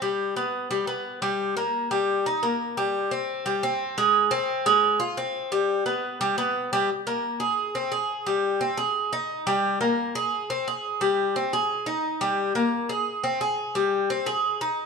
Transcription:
cuban tres
0.02 G3
0.36 B3
0.71 G3
0.87 B3
1.22 G3
1.57 A#3
1.91 G3
2.26 D#4
2.43 A#3
2.77 G3
3.11 C4
3.46 G3
3.63 C4
3.98 G#3
4.31 C4
4.66 G#3
5.00 F4
5.17 C4
5.52 G3
5.86 B3
6.21 G3
6.38 B3
6.73 G3
7.07 A#3
7.40 G#4
7.75 C4
7.92 G#4
8.27 G3
8.61 C4
8.77 G#4
9.13 D#4
9.47 G3
9.81 A#3
10.15 G#4
10.50 C4
10.68 G#4
11.01 G3
11.36 C4
11.53 G#4
11.86 D#4
12.21 G3
12.55 A#3
12.89 G#4
13.24 C4
13.41 G#4
13.75 G3
14.10 C4
14.26 G#4
14.61 D#4

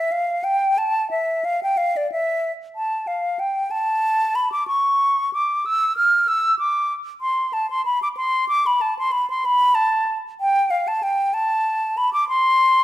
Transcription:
flute
Already playing: E5
0.12 F5
0.44 G5
0.78 A5
1.11 E5
1.45 F5
1.63 G5
1.77 F5
1.97 D5
2.12 E5
2.76 A5
3.07 F5
3.39 G5
3.71 A5
4.35 B5
4.52 D6
4.68 C#6
5.33 D6
5.66 E6
5.97 F6
6.28 E6
6.59 D6
7.21 C6
7.53 A5
7.70 C6
7.85 B5
8.02 D6
8.17 C6
8.48 D6
8.66 B5
8.81 A5
8.99 C6
9.12 B5
9.30 C6
9.45 B5
9.75 A5
10.40 G5
10.70 F5
10.88 A5
11.03 G5
11.34 A5
11.97 B5
12.13 D6
12.29 C6

